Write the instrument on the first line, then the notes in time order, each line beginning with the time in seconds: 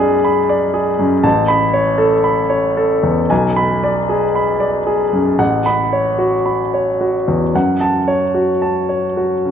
grand piano
Already playing: F#2 D5 G#5 B5
0.00 G#4
0.24 B5
0.49 D5
0.74 G#4
0.99 F#2
1.24 A1 A5
1.48 B5
1.73 C#5
1.98 A4
2.24 B5
2.50 C#5
2.77 A4
3.03 E2
3.30 B1 G#5
3.56 B5
3.84 D5
4.09 G#4
4.35 B5
4.60 D5
4.87 G#4
5.13 F#2
5.39 A1 F#5
5.66 B5
5.93 C#5
6.18 F#4
6.46 B5
6.74 C#5
7.01 F#4
7.28 E2
7.55 F#2 F#5
7.81 A5
8.08 C#5
8.35 F#4
8.62 A5
8.89 C#5
9.17 F#4
9.45 C#3